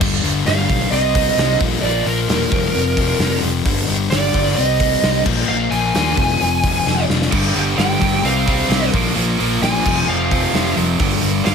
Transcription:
0.00 G1 G2 D3 G3, kick, crash
0.23 G1 G2 D3 G3, open hi-hat
0.46 G1 G2 D3 G3 F5, snare, open hi-hat
0.68 B1 G2 D3 G3, kick, open hi-hat
0.91 C2 C3 G3 C4 D#5, open hi-hat
1.14 C3 G3 C4, kick, open hi-hat
1.37 C2 C3 G3 C4, snare, open hi-hat
1.60 A#1 A#2 F3 A#3, kick, open hi-hat
1.82 A#1 A#2 F3 A#3 D5, open hi-hat
2.06 A#1 A#2 F3 A#3 A#4, open hi-hat
2.27 E1 A#2 F3 A#3, snare, open hi-hat
2.51 F1 F2 C3 F3, kick, open hi-hat
2.74 F1 F2 C3 F3, open hi-hat
2.97 F2 C3 F3, kick, open hi-hat
3.19 F1 F2 C3 F3, snare, open hi-hat
3.42 F1 F2 C3 F3, open hi-hat
3.65 G1 G2 D3 G3, kick, open hi-hat
3.88 G1 G2 D3 G3, open hi-hat
4.10 G1 G2 D3 G3 D5, snare, open hi-hat
4.34 G1 G2 D3 G3, kick, open hi-hat
4.56 C2 C3 G3 C4 D#5, open hi-hat
4.80 C3 G3 C4, kick, open hi-hat
5.03 C2 C3 G3 C4, snare, open hi-hat
5.26 A#1 A#2 F3 A#3, kick, crash
5.48 A#1 A#2 F3 A#3 F5
5.71 A#1 A#2 F3 A#3 G#5, open hi-hat
5.95 D#2 A#2 F3 A#3, snare, open hi-hat
6.17 F1 F2 C3 F3, kick, open hi-hat
6.40 F1 F2 C3 F3, open hi-hat
6.64 F2 C3 F3, kick, open hi-hat
6.86 F1 F2 C3 F3, snare
7.09 F1 F2 C3 F3, snare
7.22 snare
7.32 G1 G2 D3 G3, kick, open hi-hat, crash
7.55 G1 G2 D3 G3, open hi-hat
7.78 G1 G2 D3 G3 G5, snare, open hi-hat
8.01 G1 G2 D3 G3, kick, open hi-hat
8.23 C2 C3 G3 C4 F5, open hi-hat
8.47 C3 G3 C4, kick, open hi-hat
8.69 C2 C3 G3 C4, snare, open hi-hat
8.93 A#1 A#2 F3 A#3, kick, open hi-hat
9.16 A#1 A#2 F3 A#3, open hi-hat
9.39 A#1 A#2 F3 A#3, open hi-hat
9.62 A#1 A#2 F3 A#3 G#5, snare, open hi-hat
9.85 F1 F2 C3 F3, kick, crash
10.07 F1 F2 C3 F3 F5
10.31 F2 C3 F3, kick, open hi-hat
10.54 F1 F2 C3 F3, snare, open hi-hat
10.76 F1 F2 C3 F3, open hi-hat
10.99 G1 G2 D3 G3, kick, open hi-hat
11.22 G1 G2 D3 G3, open hi-hat
11.45 G1 G2 D3 G3 F5, snare, open hi-hat

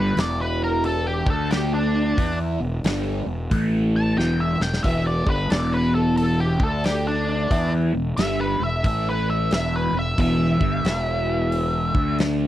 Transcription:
Already playing: G1 G2 D3 G3 B4
0.16 E1 E2 B2 E3 D5, snare, open hi-hat
0.40 B4
0.64 A#4
0.84 A4, open hi-hat
1.07 G4
1.26 D2 D3 A3 D4, kick
1.30 A4
1.51 G4, snare, open hi-hat
1.73 D4
2.17 E2 E3 B3 E4, kick, open hi-hat
2.60 E1 E2 B2
2.84 G1 G2 D3 G3, snare, open hi-hat
3.26 E1 E2 B2
3.51 A1 A2 E3 A3, kick, open hi-hat
3.96 A5
4.18 E1 E2 B2 E3 G5, snare
4.40 E5
4.60 E1 E2 B2 G5, snare
4.74 snare
4.83 E1 E2 B2 E3 E5, kick, open hi-hat
5.07 D5
5.26 G1 G2 D3 G3 B4, kick
5.50 E1 E2 B2 E3 D5, snare, open hi-hat
5.74 B4
5.95 A4
6.17 A4, open hi-hat
6.40 G4
6.60 D2 D3 A3 D4 A4, kick
6.84 G4, snare, open hi-hat
7.07 D4
7.50 E2 E3 B3 E4, kick, open hi-hat
7.93 E1 E2 B2
8.17 G1 G2 D3 G3 E5, snare, open hi-hat
8.41 B4
8.60 E1 E2 B2 E5
8.84 A1 A2 E3 A3 E5, kick, open hi-hat
9.09 B4
9.30 E5
9.51 E1 E2 B2 E3 E5, snare, open hi-hat
9.76 B4
9.93 E1 E2 B2
9.99 E5
10.18 E1 E2 B2 E3 E5, kick, open hi-hat
10.61 G1 G2 D3 G3, kick
10.84 E1 E2 B2 E3, snare, open hi-hat
11.52 open hi-hat
11.95 D2 D3 A3 D4, kick
12.19 snare, open hi-hat

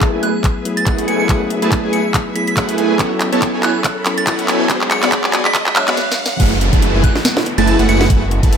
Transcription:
Already playing: F#1 F#3 A3 B3 E4 G#4 B4 E5 A5, riser
0.01 kick, clap, closed hi-hat
0.13 F#1 A3 E4 G#4 B4 G#5
0.23 F#6, closed hi-hat
0.44 kick, clap, closed hi-hat
0.64 F#3 A3 B3 E4 G#4, closed hi-hat
0.77 A6, closed hi-hat
0.86 F#1 A3 E4 G#4 B4 F#5, kick, clap, closed hi-hat
0.98 closed hi-hat
1.08 F#1 A3 E4 G#4 B4 G#5 C#7, closed hi-hat
1.20 C#7
1.27 F#1 F#3 A3 B3 E4 G#4 B4 F#5, kick, clap, closed hi-hat
1.50 closed hi-hat
1.62 F#1 A3 E4 G#4 B4 A5, closed hi-hat
1.72 kick, clap, closed hi-hat
1.83 F#1 A3 E4 G#4 B4 G#5
1.93 C#7, closed hi-hat
2.14 kick, clap, closed hi-hat
2.34 F#3 A3 B3 E4 G#4 B6, closed hi-hat
2.47 B6, closed hi-hat
2.57 F#2 A3 E4 G#4 B4 F#5, kick, clap, closed hi-hat
2.69 closed hi-hat
2.78 F#1 A3 E4 G#4 B4 G#5, closed hi-hat
2.97 B1 F#3 B3 C#4 E4 A4 C#5 B5, kick, clap, closed hi-hat
3.01 A4
3.21 clap, closed hi-hat
3.32 B1 B3 E4 A4 C#5 A5, closed hi-hat
3.42 kick, clap, closed hi-hat
3.54 B1 B3 E4 A4 C#5 G#5
3.63 F#6, clap, closed hi-hat
3.84 kick, clap, closed hi-hat
4.05 F#3 B3 C#4 E4 A4, clap, closed hi-hat
4.18 A6, closed hi-hat
4.27 B1 B3 E4 A4 C#5 F#5 A6, kick, clap, closed hi-hat
4.39 closed hi-hat
4.48 B1 B3 E4 A4 C#5 G#5, clap, closed hi-hat
4.67 G#1 F#3 G#3 B3 D4 F#4 G#4 D5 F#5, kick, clap, closed hi-hat
4.71 G#4
4.81 clap
4.91 C#7, clap, closed hi-hat
5.03 G#1 B3 F#4 G#4 D5 B5, clap, closed hi-hat
5.12 kick, clap, closed hi-hat
5.24 G#1 B3 F#4 G#4 D5 G#5, clap
5.33 clap, closed hi-hat
5.45 B6, clap
5.55 kick, clap, closed hi-hat
5.66 clap
5.75 F#3 G#3 B3 D4 C#5 F#6, clap, closed hi-hat
5.88 G#1 B3 F#4 G#4 D5 B5, clap, closed hi-hat
5.97 snare
6.11 snare
6.26 snare
6.40 F#1 E3 G#3 A3 B3 E4 F#4 G#4 B4 F#5, kick, closed hi-hat, crash, downlifter
6.61 closed hi-hat
6.73 F#1 A3 E4 G#4 B4 A5, kick, closed hi-hat
6.82 closed hi-hat
6.94 F#1 A3 E4 G#4 B4 G#5
7.04 F#6, kick, closed hi-hat
7.15 snare
7.25 snare, closed hi-hat
7.37 snare
7.46 closed hi-hat
7.58 F#1 A3 E4 G#4 B4 A5 A6, closed hi-hat
7.68 A6, closed hi-hat
7.79 F#1 A3 E4 G#4 B4 F#5, closed hi-hat
7.89 F#1 A3 E4 G#4 B4 F#5 C#7, closed hi-hat
8.01 C#7, snare
8.10 F#1 A3 E4 G#4 B4 F#5, kick, closed hi-hat
8.31 closed hi-hat
8.43 F#1 A3 E4 G#4 B4 A5, kick, closed hi-hat
8.53 closed hi-hat

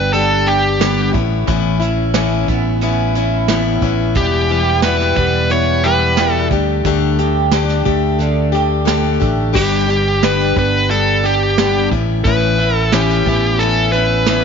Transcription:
Already playing: G1 G2 G3 B3 D4 G4 B4
0.13 G3 B3 D4 G4 A4, closed hi-hat
0.47 G3 B3 D4 G4, closed hi-hat
0.80 G2 D3 G3 B3 D4 G4, snare, closed hi-hat
1.13 A1 A2 B3 C#4 E4, kick, closed hi-hat
1.47 A1 A2 E3 B3 C#4 E4, kick, closed hi-hat
1.80 B3 C#4 E4, closed hi-hat
2.14 A2 E3 B3 C#4 E4, snare, closed hi-hat
2.48 A1 B3 C#4 E4, kick, closed hi-hat
2.81 E3 B3 C#4 E4, closed hi-hat
3.15 B3 C#4 E4, closed hi-hat
3.48 A2 E3 B3 C#4 E4, snare, closed hi-hat
3.81 A1 E3 B3 C#4 E4, kick, closed hi-hat
4.15 E1 E2 B2 E3 G3 B3 E4 G4, kick, closed hi-hat
4.49 G3 B3 E4 G4, closed hi-hat
4.53 E3
4.82 E2 B2 E3 G3 B3 E4 B4, snare, closed hi-hat
5.00 snare
5.16 E1 E3 G3 B3 E4 B4, kick, closed hi-hat
5.50 E3 G3 B3 E4 C#5, closed hi-hat
5.83 E3 G3 B3 E4 G4 B4, closed hi-hat
6.17 E2 B2 E3 G3 B3 E4, snare, closed hi-hat
6.32 A4
6.50 D2 D3 A3 D4 G4, kick, closed hi-hat
6.84 D2 D3 A3 D4 G4, kick, closed hi-hat
7.18 A3 D4 G4, closed hi-hat
7.51 D3 A3 D4 G4, snare, closed hi-hat
7.69 snare
7.85 D2 A3 D4 G4, kick, closed hi-hat
8.19 D3 A3 D4 G4, closed hi-hat
8.52 A3 D4 G4, closed hi-hat
8.85 D3 A3 D4 G4, snare, closed hi-hat
9.20 A1 D3 A3 D4 G4, kick, closed hi-hat
9.53 G1 G2 D3 G3 B3 D4 G4, kick, crash
9.87 G3 B3 D4 G4, closed hi-hat
10.23 G2 D3 G3 B3 D4 G4 B4, snare, closed hi-hat
10.40 snare
10.56 G1 G3 B3 D4 G4 B4, kick, closed hi-hat
10.89 G3 B3 D4 G4 A4, closed hi-hat
11.23 G3 B3 D4 G4, closed hi-hat
11.58 G2 D3 G3 B3 D4 G4, snare, closed hi-hat
11.91 A1 A2 B3 C#4 E4, kick, closed hi-hat
12.24 A1 A2 E3 B3 C#4 E4 B4, kick, closed hi-hat
12.59 B3 C#4 E4, closed hi-hat
12.77 A4
12.92 A2 E3 B3 C#4 E4 G4, snare, closed hi-hat
13.10 snare
13.25 A1 E4, kick, closed hi-hat
13.30 B3 C#4
13.59 E3 B3 C#4 E4 A4, closed hi-hat
13.92 E4 B4, closed hi-hat
13.96 B3 C#4
14.26 A2 E3 B3 C#4 E4, snare, closed hi-hat

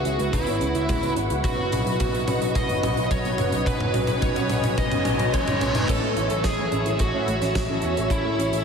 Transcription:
Already playing: F#4 B4 E5 F#5 C#6, riser
0.05 C#2 C#4 E4 G#4 B4, closed hi-hat
0.19 C#2 G#3, closed hi-hat
0.33 C#2 G#3 E4, kick, closed hi-hat, mid tom
0.47 G#1 B3 C#4 E4 G#4 C#5, closed hi-hat
0.61 C#2 C#4, closed hi-hat
0.75 C#2 E4, closed hi-hat
0.89 C#2 G#3, kick, closed hi-hat, mid tom
1.03 C#2 B3 C#4 E4 G#4 B4, closed hi-hat
1.17 G#1 C#4, closed hi-hat
1.30 C#2 E4, closed hi-hat
1.44 B1 F#3 C#4 D#4 F#4 B4 D#5, kick, closed hi-hat, mid tom
1.58 F#1 B3
1.72 B1 C#4, closed hi-hat, mid tom
1.86 B1 F#3 C#4 D#4 F#4 B4, closed hi-hat
2.00 B1 F#3, kick, closed hi-hat, mid tom
2.14 B1 B3, closed hi-hat
2.28 B1 C#4 D#4 F#4 B4, closed hi-hat, mid tom
2.42 B1 D#4, closed hi-hat
2.55 B1 F#3 D#5, kick, closed hi-hat, mid tom
2.69 F#1 B3 C#4 D#4 F#4 C#5, closed hi-hat
2.83 B1 C#4, closed hi-hat, mid tom
2.97 B1 D#4, closed hi-hat
3.11 B1 F#3 C#5, kick, closed hi-hat, mid tom
3.25 B1 B3 C#4 D#4 F#4 B4, closed hi-hat
3.38 F#1 C#4, closed hi-hat, mid tom
3.52 B1 F#3, closed hi-hat
3.66 B1 F#3 C#4 D#4 F#4 B4 G#5, kick, closed hi-hat, mid tom
3.81 F#1 B3, mid tom
3.94 B1 C#4, closed hi-hat, mid tom
4.07 B1 C#4 D#4 F#4 B4, closed hi-hat, mid tom
4.22 B1 F#3 C#5, kick, closed hi-hat, mid tom
4.36 B1 B3, closed hi-hat, mid tom
4.50 B1 C#4 D#4 F#4 B4, closed hi-hat, mid tom
4.64 B1 D#4, closed hi-hat, mid tom
4.78 B1 F#3 D#5, kick, closed hi-hat, mid tom, reverse cymbal
4.92 F#1 B3 C#4 D#4 F#4 C#5, closed hi-hat, mid tom
5.05 B1 C#4 D#4 F#4 A4, closed hi-hat, mid tom
5.19 B1 F#3, closed hi-hat, mid tom
5.33 A1 F#3 C#5, kick, closed hi-hat, mid tom
5.47 F#1 B3 C#4 D#4 F#4 C#5, closed hi-hat, mid tom
5.61 B1 C#4 D#4 F#4 B4, closed hi-hat, mid tom
5.75 F#1 D#4, closed hi-hat, mid tom
5.89 A1 A3 C#4 E4 A4 C#5 E5 E6, kick, closed hi-hat, crash
6.03 A2 C#4
6.17 A1 E4, closed hi-hat
6.30 A1 C#4 E4 A4, closed hi-hat
6.44 A1 G#4 C#5, kick, snare, closed hi-hat
6.58 A1 A3
6.72 A1 C#4 E4 A4 C#5, closed hi-hat
6.86 A1 E4, closed hi-hat
6.99 A1 F#4 A4, kick, closed hi-hat
7.14 A2 C#4 E4 A4 C#5 E5
7.28 A1 A3, closed hi-hat
7.42 A1 C#4, snare, closed hi-hat
7.55 A3, kick, snare, closed hi-hat
7.69 A1 C#4 E4 A4 C#5
7.82 E2 E4, closed hi-hat
7.97 A1 A4, closed hi-hat
8.10 A1 C#4 E4 A4 C#5, kick, closed hi-hat
8.25 A2 A3
8.39 A1 C#4, closed hi-hat
8.53 A1 C#4 E4 A4 C#5, closed hi-hat

